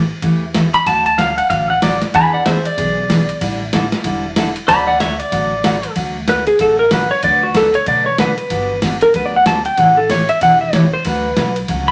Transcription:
0.22 upright bass E2, steel-string acoustic guitar C#3 E3 A3 C#4 G4, kick, ride
0.54 steel-string acoustic guitar C#3 E3 A3 C#4 G4, kick, snare, hi-hat pedal, ride
0.74 pedal steel guitar B5, ride
0.86 upright bass D2, steel-string acoustic guitar D3 F#3 A3 C#4 F#4, pedal steel guitar A5, kick, ride
1.06 pedal steel guitar A5, ride
1.18 steel-string acoustic guitar D3 F#3 A3 C#4 F#4, pedal steel guitar F5, kick, snare, hi-hat pedal, ride
1.38 pedal steel guitar F#5, ride
1.50 upright bass A1, steel-string acoustic guitar D3 F#3 A3 C#4 F#4, pedal steel guitar F5, kick, ride
1.70 pedal steel guitar F#5
1.82 steel-string acoustic guitar D3 F#3 A3 C#4 F#4, pedal steel guitar D5, kick, snare, hi-hat pedal, ride
2.02 snare, ride
2.14 upright bass E2, steel-string acoustic guitar E3 B3 D4 G#4, pedal steel guitar G#5 B5, kick, ride
2.33 pedal steel guitar D5 F#5
2.45 steel-string acoustic guitar E3 B3 D4 G#4, pedal steel guitar C5 E5, kick, snare, hi-hat pedal, ride
2.65 pedal steel guitar D5, ride
2.77 upright bass B1, steel-string acoustic guitar E3 B3 D4 G#4, kick, ride
3.09 steel-string acoustic guitar E3 B3 D4 G#4, kick, snare, hi-hat pedal, ride
3.29 ride
3.41 upright bass A1, steel-string acoustic guitar D3 G3 D4 E4 A4, kick, ride
3.73 steel-string acoustic guitar D3 G3 D4 E4 A4, kick, snare, hi-hat pedal, ride
3.92 snare, ride
4.04 upright bass E1, steel-string acoustic guitar D3 G3 D4 E4 A4, kick, ride
4.36 steel-string acoustic guitar D3 G3 D4 E4 A4, kick, snare, hi-hat pedal, ride
4.56 ride
4.68 upright bass D2, steel-string acoustic guitar D3 F#3 A3 C#4 F#4, pedal steel guitar D5 B5, kick, ride
4.87 pedal steel guitar D5 F#5
5.00 steel-string acoustic guitar D3 F#3 A3 C#4 F#4, pedal steel guitar C#5 E5, kick, snare, hi-hat pedal, ride
5.19 pedal steel guitar D5, ride
5.31 upright bass A1, steel-string acoustic guitar D3 F#3 A3 C#4 F#4, kick, ride
5.63 steel-string acoustic guitar D3 F#3 A3 C#4 F#4, kick, snare, hi-hat pedal, ride
5.83 ride
5.95 upright bass D2, steel-string acoustic guitar D3 F#3 A3 C#4 F#4, kick, ride
6.27 steel-string acoustic guitar D3 F#3 A3 C#4 F#4, electric slide guitar B4, kick, snare, hi-hat pedal, ride
6.47 electric slide guitar G#4, ride
6.59 upright bass A1, steel-string acoustic guitar D3 F#3 A3 C#4 F#4, electric slide guitar A4, kick, ride
6.79 electric slide guitar A#4
6.91 steel-string acoustic guitar D3 F#3 A3 C#4 F#4, electric slide guitar B4, kick, snare, hi-hat pedal, ride
7.11 electric slide guitar C#5
7.23 upright bass D2, steel-string acoustic guitar D3 F#3 A3 D4 F#4 B4, electric slide guitar D5, kick, ride
7.43 electric slide guitar F#4
7.54 steel-string acoustic guitar D3 F#3 A3 D4 F#4 B4, electric slide guitar A4, kick, snare, hi-hat pedal, ride
7.74 electric slide guitar C#5, ride
7.86 upright bass B2, steel-string acoustic guitar D3 F#3 A3 D4 F#4 B4, electric slide guitar D5, kick, ride
8.06 electric slide guitar C#5
8.18 steel-string acoustic guitar D3 F#3 A3 D4 F#4 B4, electric slide guitar B4, kick, snare, hi-hat pedal, ride
8.37 electric slide guitar B4, ride
8.50 upright bass G1, steel-string acoustic guitar D3 F#3 B3 D4 G4, kick, ride
8.82 steel-string acoustic guitar D3 F#3 B3 D4 G4, kick, snare, hi-hat pedal, ride
9.01 electric slide guitar A#4, ride
9.14 upright bass D2, steel-string acoustic guitar D3 F#3 B3 D4 G4, electric slide guitar B4, kick, ride
9.26 electric slide guitar D5
9.36 electric slide guitar F#5
9.46 steel-string acoustic guitar D3 F#3 B3 D4 G4, electric slide guitar A5, kick, snare, hi-hat pedal, ride
9.65 electric slide guitar G5, ride
9.78 upright bass A1, steel-string acoustic guitar C#3 E3 A3 C#4 G4, electric slide guitar F#5, kick, ride
9.97 electric slide guitar A4
10.09 steel-string acoustic guitar C#3 E3 A3 C#4 G4, electric slide guitar C#5, kick, snare, hi-hat pedal, ride
10.29 electric slide guitar E5, ride
10.41 upright bass E1, steel-string acoustic guitar C#3 E3 A3 C#4 G4, electric slide guitar F#5, kick, ride
10.61 electric slide guitar E5
10.73 steel-string acoustic guitar C#3 E3 A3 C#4 G4, electric slide guitar C#5, kick, snare, hi-hat pedal, ride
10.94 electric slide guitar C5
11.05 upright bass D2, steel-string acoustic guitar D3 F#3 A3 C#4 F#4, electric slide guitar B4, kick, ride
11.37 upright bass B1, steel-string acoustic guitar D3 F#3 A3 C#4 F#4, kick, snare, hi-hat pedal, ride
11.56 ride
11.68 upright bass C#2, steel-string acoustic guitar D3 F#3 A3 C#4 F#4, kick, ride
11.88 electric slide guitar B5

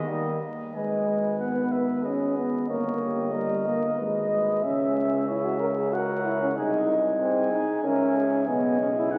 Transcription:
Already playing: bass trombone D#2, trumpet D#5
0.07 trombone D#3, french horn G3, flugelhorn A#3
0.74 bass trombone G#1, trombone G#3, french horn B4, flugelhorn D#5, trumpet G#5
1.08 french horn B4
1.39 trombone B3, flugelhorn B4, trumpet F#5
1.72 trumpet E5
2.04 trombone C#4, french horn G#4, trumpet D#5
2.37 trombone B3
2.68 bass trombone G1, trombone A#3, french horn A#4, flugelhorn C#5, trumpet D#5
3.01 french horn G4
3.33 trombone G3, french horn A#4, flugelhorn D#5
3.66 trombone A#3
3.96 bass trombone G#1, trombone G#3, french horn B4, flugelhorn D#5
4.31 french horn B4
4.62 bass trombone C#2, trombone C#4, french horn G#4, flugelhorn E5, trumpet E5
4.96 flugelhorn E5
5.27 trombone E4, flugelhorn C#5
5.45 trombone F#4
5.60 trombone A#4
5.77 trombone G#4
5.92 trombone F#4, french horn A#4, flugelhorn C#5, trumpet F#5
6.24 trombone E4
6.42 trombone C#4
6.55 bass trombone C2, trombone D#4, french horn G#4, flugelhorn D#5, trumpet G#5
7.19 trombone C4, french horn G#4, trumpet G#5
7.52 trombone D#4
7.82 bass trombone C#2, trombone C#4, french horn A#4, flugelhorn E5, trumpet G#5
8.16 french horn G#4
8.47 bass trombone B1, trombone B3, french horn G#4, flugelhorn D#5, trumpet G#5
8.81 trombone C#4
8.97 trombone E4
9.12 trombone D#4, flugelhorn D#5, trumpet F#5

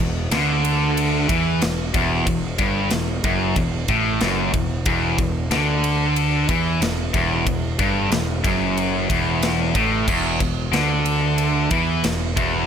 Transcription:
0.00 picked electric bass E1, distorted electric guitar E2
0.31 picked electric bass D2, distorted electric guitar D3, snare, ride
0.65 ride
0.97 ride
1.28 picked electric bass E2, distorted electric guitar E3, kick, ride
1.61 picked electric bass E1, distorted electric guitar E2, snare, ride
1.94 picked electric bass E1, distorted electric guitar E2, kick, ride
2.26 picked electric bass E1, distorted electric guitar E2, kick, ride
2.58 picked electric bass G1, distorted electric guitar G2, kick, ride
2.91 picked electric bass E1, distorted electric guitar E2, snare, ride
3.23 picked electric bass F#1, distorted electric guitar F#2, kick, ride
3.56 picked electric bass E1, distorted electric guitar E2, kick, ride
3.88 picked electric bass A1, distorted electric guitar A2, kick, ride
4.21 picked electric bass F#1, distorted electric guitar F#2, snare, ride
4.53 picked electric bass E1, distorted electric guitar E2, kick, ride
4.86 picked electric bass E1, distorted electric guitar E2, kick, ride
5.18 picked electric bass E1, distorted electric guitar E2, kick, ride
5.51 picked electric bass D2, distorted electric guitar D3, snare, ride
5.84 ride
6.16 ride
6.49 picked electric bass E2, distorted electric guitar E3, kick, ride
6.80 picked electric bass E1, distorted electric guitar E2, snare, ride
7.14 picked electric bass E1, distorted electric guitar E2, kick, ride
7.47 picked electric bass E1, distorted electric guitar E2, kick, ride
7.79 picked electric bass G1, distorted electric guitar G2, kick, ride
8.11 picked electric bass E1, distorted electric guitar E2, snare, ride
8.44 picked electric bass F#1, distorted electric guitar F#2, kick, ride
8.77 ride
9.09 picked electric bass E1, distorted electric guitar E2, kick, ride
9.42 snare, ride
9.75 picked electric bass A1, distorted electric guitar A2, kick, ride
10.07 picked electric bass E1, distorted electric guitar E2, kick, crash
10.40 picked electric bass E1, distorted electric guitar E2, kick, ride
10.72 picked electric bass D2, distorted electric guitar D3, snare, ride
11.06 ride
11.38 ride
11.71 picked electric bass E2, distorted electric guitar E3, kick, ride
12.04 picked electric bass E1, distorted electric guitar E2, snare, ride
12.37 picked electric bass E1, distorted electric guitar E2, kick, ride

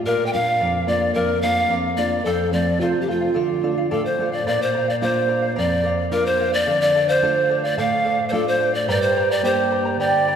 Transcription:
0.06 nylon-string guitar A#2, pan flute A#4, charango A#4 D5 F5
0.26 pan flute G5
0.33 nylon-string guitar A#3 D4 F4, charango A#4 D5 F5, pan flute F5
0.47 charango D5 F5
0.60 nylon-string guitar F2, charango A#4 D5 F5
0.87 nylon-string guitar A#3 D4 F4, charango A#4 D5 F5, pan flute D5
1.01 charango D5 F5
1.14 nylon-string guitar F2, pan flute A#4, charango A#4 D5 F5
1.42 nylon-string guitar A#3 D4 F4, charango A#4 D5 F5, pan flute F5
1.57 charango D5 F5
1.69 nylon-string guitar F2, charango A#4 D5 F5
1.97 nylon-string guitar A#3 D4 F4, charango A#4 D5 F5, pan flute D5
2.11 charango D5 F5
2.25 nylon-string guitar F2, pan flute A4, charango A4 C5 F5
2.51 nylon-string guitar F3 A3 C4, charango A4 C5 F5, pan flute D5
2.66 charango C5 F5
2.80 nylon-string guitar C3, pan flute F4, charango A4 C5 F5
3.01 pan flute G4
3.07 nylon-string guitar F3 A3 C4, pan flute F4, charango A4 C5 F5
3.21 charango C5 F5
3.34 nylon-string guitar D3, charango A4 D5 F5
3.63 nylon-string guitar A3 D4 F4, charango A4 D5 F5
3.78 charango D5 F5
3.91 nylon-string guitar A2, charango A4 D5 F5, pan flute A4
4.05 pan flute C5
4.18 nylon-string guitar A3 D4 F4, charango A4 D5 F5
4.32 pan flute D5, charango D5 F5
4.46 nylon-string guitar A#2, charango A#4 D5 F5, pan flute D5
4.62 pan flute C5
4.74 charango A#4 D5 F5
4.88 pan flute D5, charango D5 F5
5.01 nylon-string guitar A#3 D4 F4, charango A#4 D5 F5, pan flute C5
5.29 charango A#4 D5 F5
5.42 charango D5 F5
5.56 nylon-string guitar F2, charango A#4 D5 F5, pan flute D5
5.83 charango A#4 D5 F5
5.98 charango D5 F5
6.11 nylon-string guitar A#3 D4 F4, charango A#4 D5 F5, pan flute A#4
6.26 pan flute C5
6.38 charango A#4 D5 F5
6.52 pan flute D5, charango D5 F5
6.66 nylon-string guitar D3, charango A4 D5 F5
6.82 pan flute D5
6.95 charango A4 D5 F5
7.09 pan flute C5, charango D5 F5
7.22 nylon-string guitar A3 D4 F4, charango A4 D5 F5
7.49 charango A4 D5 F5
7.64 pan flute D5, charango D5 F5
7.77 nylon-string guitar A2, charango A4 D5 F5, pan flute F5
8.04 charango A4 D5 F5
8.18 charango D5 F5
8.29 nylon-string guitar A3 D4, charango A4 D5 F5, pan flute C5
8.33 nylon-string guitar F4, pan flute A4
8.48 pan flute C5
8.60 charango A4 D5 F5
8.73 charango D5 F5, pan flute D5
8.88 nylon-string guitar G2, charango G4 A#4 D5 G5 A#5, pan flute D5
9.02 pan flute C5
9.16 charango A#4 D5 G5 A#5
9.31 charango A#4 D5 A#5, pan flute D5
9.43 nylon-string guitar A#3 D4 G4, charango G4 A#4 D5 G5 A#5, pan flute C5
9.71 charango A#4 D5 G5 A#5
9.85 charango A#4 D5 A#5
9.97 nylon-string guitar D3, charango G4 A#4 D5 G5 A#5, pan flute D5
10.28 charango A#4 D5 G5 A#5

